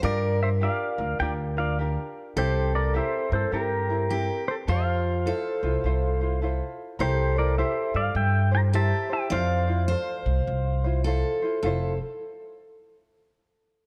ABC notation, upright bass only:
X:1
M:4/4
L:1/8
Q:"Swing" 1/4=104
K:F
V:1 name="Upright bass" clef=bass
G,,3 D,, D,,4 | C,,3 G,, G,,4 | F,,3 C,, C,,4 | C,,3 G,, G,,4 |
F,,3 C,, C,,4 | F,,, z6 z |]